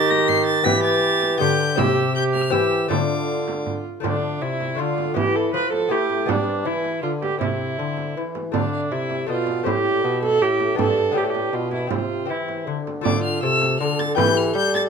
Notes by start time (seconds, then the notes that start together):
Already playing: D#3 D#4 G4 A6
0.10 A#6, frame drum
0.28 C7, frame drum
0.46 A6
0.63 E3 B3 G4 B6, frame drum
0.83 A6
1.22 frame drum
1.38 D3 B3 G4 G6, frame drum
1.76 C3 C4 G4 E6, frame drum
2.15 G4 G6
2.34 F6, frame drum
2.50 E3 C4 G4 E6, frame drum
2.88 D3 A3 D4 F4 D6, frame drum
3.48 frame drum
3.66 frame drum
4.00 D3 F3 A3 D4, frame drum
4.04 D3 D4 F5
4.42 C3 E4 E5
4.60 frame drum
4.75 A3 D4 F4 D5
4.79 D3 F4
4.98 frame drum
5.14 E3 B3 E4 G4 B4, frame drum
5.36 A4
5.54 F3 B4
5.72 A4, frame drum
5.89 A3 B3 E4 G4 B4
6.10 frame drum
6.26 G3 B3 D4 D5, frame drum
6.47 C5
6.65 E3 E4 B4
6.84 frame drum
7.03 D3 F4 B4
7.22 G4, frame drum
7.39 C3 C4 E4 C5, frame drum
7.79 D3
7.97 frame drum
8.16 E3
8.35 frame drum
8.52 D3 A3 D4 F5, frame drum
8.73 F5
8.91 C3 E4 E5
9.10 frame drum
9.26 B2 A3 D4 F4 D5
9.47 frame drum
9.63 A2 A3 E4 G4 C5, frame drum
9.86 D5
10.04 B2 E5
10.23 A4, frame drum
10.41 A2 G4
10.60 frame drum
10.75 G2 B3 D4 G4 E5, frame drum
10.79 A4
10.98 D5
11.12 A2 B3 D4 G4
11.16 G4 B4
11.24 A4
11.30 G4
11.35 frame drum
11.53 B2 F4
11.71 E4, frame drum
11.87 C3 C4 G4, frame drum
11.91 F4 C5
12.26 E3 C4 G4
12.30 E4
12.49 frame drum
12.66 D3
12.87 frame drum
13.01 D3 A3 F4 D5 D6
13.05 F4, frame drum
13.24 F6
13.43 C3 A4 E6
13.62 frame drum
13.80 D3 A4 F6
13.99 A6, frame drum
14.15 E3 G4 B4 G6, frame drum
14.37 F6
14.55 G3 G6
14.74 A6, frame drum